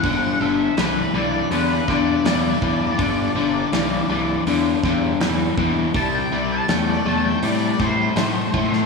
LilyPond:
<<
  \new Staff \with { instrumentName = "Lead electric guitar" } { \time 4/4 \key g \major \tempo 4 = 81 fis''8 e''8 b'8 d''8 b'8 d''8 d''4~ | d''2 r2 | a''16 g''16 d''16 a''16 g''16 d''16 a''16 g''16 d''8 c''4. | }
  \new Staff \with { instrumentName = "Overdriven electric guitar" } { \clef bass \time 4/4 \key g \major <g, d>8 <g, d>8 <g, e>8 <g, e>8 <g, d>8 <g, d>8 <g, e>8 <g, e>8 | <g, d>8 <g, d>8 <g, e>8 <g, e>8 <g, d>8 <g, d>8 <g, e>8 <g, e>8 | <c g>8 <c g>8 <c a>8 <c a>8 <c g>8 <c g>8 <c a>8 <c a>8 | }
  \new Staff \with { instrumentName = "Picked electric bass" } { \clef bass \time 4/4 \key g \major g,,8 g,,8 c,8 c,8 e,8 e,8 e,8 e,8 | g,,8 g,,8 c,8 c,8 e,8 e,8 e,8 e,8 | c,8 c,8 e,8 e,8 a,8 a,8 a,8 a,8 | }
  \new DrumStaff \with { instrumentName = "Drums" } \drummode { \time 4/4 <hho bd>4 <hho sn>4 hho8 <bd sn>8 <hho sn>8 bd8 | <hho bd>4 <hho sn>4 hho8 <bd sn>8 <hho sn>8 bd8 | <hho bd>4 <hho sn>4 hho8 <bd sn>8 <hho sn>8 bd16 sn16 | }
>>